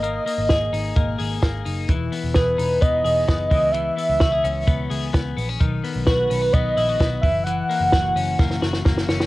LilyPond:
<<
  \new Staff \with { instrumentName = "Soft synth lead" } { \time 4/4 \key b \major \tempo 4 = 129 dis''2.~ dis''8 r8 | r4 b'4 dis''8 dis''4 dis''8 | e''2. r4 | r4 b'4 dis''8 dis''4 e''8 |
fis''2. r4 | }
  \new Staff \with { instrumentName = "Clean electric guitar" } { \time 4/4 \key b \major ais8 ais8 gis'8 dis'8 ais8 gis'8 ais8 dis'8 | e8 b8 gis'8 dis'8 b8 gis'8 b8 e8 | e8 b8 fis'16 gis'16 cis'8 b8 gis'8 b8 b16 cis'16 | dis8 b8 fis'8 cis'16 dis'16 b8 e'16 fis'16 b8 e8 |
e8 ais8 fis'8 cis'8 ais8 fis'8 ais8 cis'8 | }
  \new Staff \with { instrumentName = "Picked electric bass" } { \clef bass \time 4/4 \key b \major gis,,8 r16 gis,,16 gis,,8 gis,,8 gis,,8 gis,,8 gis,,8 fis,,8 | e,,8 r16 e,,16 e,,8 e,,8 e,,8 e,,8 fis,,8 cis,8~ | cis,8 r16 cis,16 cis,8 cis,8 cis,8 cis,8 cis,8 ais,,8 | b,,8 r16 b,,16 b,,8 b,,8 b,,8 ais,,8 b,,8 fis,,8~ |
fis,,8 r16 fis,,16 fis,,8 fis,,8 fis,,8 fis,,8 fis,,8 fis,,8 | }
  \new DrumStaff \with { instrumentName = "Drums" } \drummode { \time 4/4 hh8 hho8 <hh bd sn>8 hho8 <hh bd>8 hho8 <hh bd sn>8 hho8 | <hh bd>8 hho8 <hh bd sn>8 hho8 <hh bd>8 hho8 <hh bd sn>8 <hho bd>8 | hh8 hho8 <hh bd sn>8 hho8 <hh bd>8 hho8 <hh bd sn>8 hho8 | <hh bd>8 hho8 <hh bd sn>8 hho8 <hh bd>8 hho8 <hh bd sn>8 <hho bd>8 |
hh8 hho8 <hh bd sn>8 hho8 <bd sn>16 sn16 sn16 sn16 <bd sn>16 sn16 sn16 sn16 | }
>>